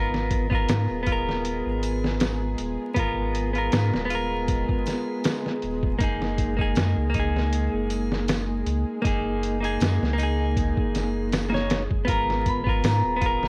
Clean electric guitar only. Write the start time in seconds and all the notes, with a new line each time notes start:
Already playing: B3 F4 A#4
0.50 B3 F4
0.55 A#4
1.03 B3
1.07 F4
1.12 A#4
2.94 B3 F4
2.99 A#4
3.53 B3 F4
3.58 A#4
4.05 B3
4.10 F4
4.15 A#4
5.99 A#3 D#4
6.04 G#4
6.57 A#3 D#4
6.61 G#4
7.10 A#3
7.14 D#4
7.19 G#4
9.02 A#3 D#4
9.07 G#4
9.60 A#3 D#4
9.65 G#4
10.13 A#3
10.18 D#4
10.23 G#4
11.50 A#3 D#4
11.54 C#5
12.05 B3 F4
12.09 A#4
12.64 B3 F4
12.69 A#4
13.16 B3
13.21 F4
13.26 A#4